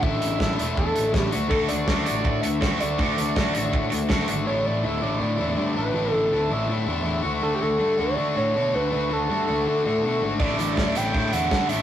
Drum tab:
HH |-x-x-x-x|-x-x-x-x|-x-x-x-x|--------|
SD |--o---o-|--o---o-|--o---o-|--------|
BD |o-o-o-o-|o-o-o-o-|o-o-o-o-|--------|

HH |--------|--------|--------|-x-x-x-x|
SD |--------|--------|--------|--o---o-|
BD |--------|--------|--------|o-o-o-o-|